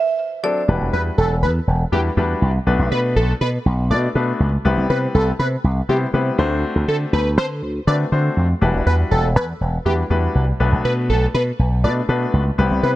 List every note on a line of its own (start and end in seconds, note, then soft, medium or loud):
0.00 0.45 E5 loud
0.43 0.60 F#3 medium
0.43 0.60 C4 medium
0.43 0.60 D4 medium
0.43 0.60 A4 medium
0.43 0.67 D5 medium
0.68 0.76 E1 loud
0.68 1.34 G3 medium
0.68 1.34 D4 medium
0.68 1.34 E4 medium
0.68 1.34 F#4 medium
0.68 1.34 B4 medium
0.81 0.89 E1 loud
0.93 1.09 E2 loud
0.93 1.01 B4 medium
1.18 1.44 E1 loud
1.18 1.35 A4 medium
1.43 1.59 E2 loud
1.43 1.51 B4 medium
1.67 1.84 E1 loud
1.92 2.08 E2 loud
1.92 2.09 G3 medium
1.92 2.09 D4 medium
1.92 2.09 E4 medium
1.92 2.09 F#4 medium
1.92 2.01 G4 medium
1.92 2.09 B4 medium
2.17 2.33 E2 loud
2.17 2.50 G3 medium
2.17 2.50 D4 medium
2.17 2.50 E4 medium
2.17 2.50 F#4 medium
2.17 2.50 B4 medium
2.42 2.58 C2 loud
2.67 2.75 B1 loud
2.67 3.32 A3 medium
2.67 3.32 B3 medium
2.67 3.32 D4 medium
2.67 3.32 F#4 medium
2.67 3.33 B4 loud
2.79 2.87 B1 medium
2.91 3.18 B2 loud
2.91 3.00 B4 medium
3.16 3.32 B1 loud
3.16 3.33 A4 medium
3.41 3.57 B2 loud
3.41 3.49 B4 medium
3.66 3.92 B1 loud
3.90 4.07 B2 loud
3.90 4.07 A3 medium
3.90 4.07 B3 medium
3.90 4.07 D4 medium
3.90 4.07 F#4 medium
3.90 3.99 D5 medium
3.90 4.07 D5 medium
4.15 4.31 B2 loud
4.15 4.48 A3 medium
4.15 4.48 B3 medium
4.15 4.48 D4 medium
4.15 4.48 F#4 medium
4.15 4.48 B4 medium
4.40 4.56 C#2 loud
4.65 4.73 C2 loud
4.65 5.31 G3 medium
4.65 5.31 B3 medium
4.65 5.31 C4 medium
4.65 5.31 E4 medium
4.65 5.31 B4 loud
4.77 4.85 C2 medium
4.90 5.06 C3 loud
4.90 4.98 B4 medium
5.15 5.31 C2 loud
5.15 5.31 A4 medium
5.39 5.55 C3 loud
5.39 5.48 B4 medium
5.64 5.80 C2 loud
5.89 6.05 C3 loud
5.89 6.05 G3 medium
5.89 6.05 B3 medium
5.89 6.05 C4 medium
5.89 6.05 E4 medium
5.89 5.97 G4 medium
5.89 6.06 C5 medium
6.13 6.30 C3 loud
6.13 6.38 G3 medium
6.13 6.38 B3 medium
6.13 6.37 C4 medium
6.13 6.39 E4 medium
6.13 6.39 B4 medium
6.38 6.63 D2 loud
6.38 7.18 A3 medium
6.38 7.18 C4 medium
6.38 7.18 D4 medium
6.38 7.18 F#4 medium
6.38 7.18 C5 loud
6.76 6.84 D2 loud
6.88 7.04 D3 loud
6.88 6.97 A4 medium
7.13 7.38 D2 loud
7.13 7.30 B4 medium
7.38 7.62 D3 loud
7.38 7.46 C5 medium
7.62 7.79 D2 loud
7.87 8.03 D3 loud
7.87 8.04 A3 medium
7.87 8.04 C4 medium
7.87 8.04 D4 medium
7.87 8.04 F#4 medium
7.87 8.04 B4 medium
7.87 7.96 D5 medium
8.12 8.28 D3 loud
8.12 8.45 A3 medium
8.12 8.45 C4 medium
8.12 8.45 D4 medium
8.12 8.45 F#4 medium
8.12 8.45 C5 medium
8.37 8.53 F2 medium
8.61 8.70 E1 loud
8.61 9.27 G3 medium
8.61 9.27 D4 medium
8.61 9.27 E4 medium
8.61 9.27 F#4 medium
8.61 9.28 B4 loud
8.74 8.82 E1 loud
8.86 9.03 E2 loud
8.86 8.95 B4 medium
9.11 9.36 E1 medium
9.11 9.28 A4 medium
9.36 9.52 E2 loud
9.36 9.44 B4 medium
9.61 9.77 E1 loud
9.85 10.02 E2 loud
9.85 10.02 G3 medium
9.85 10.02 D4 medium
9.85 10.02 E4 medium
9.85 10.02 F#4 medium
9.85 9.94 G4 medium
9.85 10.02 B4 medium
10.10 10.27 E2 loud
10.10 10.43 G3 medium
10.10 10.43 D4 medium
10.10 10.43 E4 medium
10.10 10.43 F#4 medium
10.10 10.43 B4 loud
10.35 10.51 C2 loud
10.60 10.68 B1 loud
10.60 11.26 A3 medium
10.60 11.26 B3 medium
10.60 11.26 D4 medium
10.60 11.26 F#4 medium
10.60 11.26 B4 loud
10.72 10.80 B1 loud
10.85 11.11 B2 loud
10.85 10.93 B4 medium
11.10 11.26 B1 loud
11.10 11.26 A4 medium
11.34 11.51 B2 loud
11.34 11.43 B4 medium
11.59 11.85 B1 loud
11.84 12.00 B2 loud
11.84 12.00 A3 medium
11.84 12.00 B3 medium
11.84 12.00 D4 medium
11.84 12.00 F#4 medium
11.84 12.01 B4 medium
11.84 11.92 D5 medium
12.09 12.25 B2 loud
12.09 12.42 A3 medium
12.09 12.42 B3 medium
12.09 12.42 D4 medium
12.09 12.42 F#4 medium
12.09 12.42 B4 loud
12.34 12.50 C#2 loud
12.58 12.66 C2 loud
12.58 12.96 G3 medium
12.58 12.96 B3 medium
12.58 12.96 C4 medium
12.58 12.96 E4 medium
12.58 12.96 B4 loud
12.71 12.79 C2 medium
12.83 12.96 C3 loud
12.83 12.92 B4 medium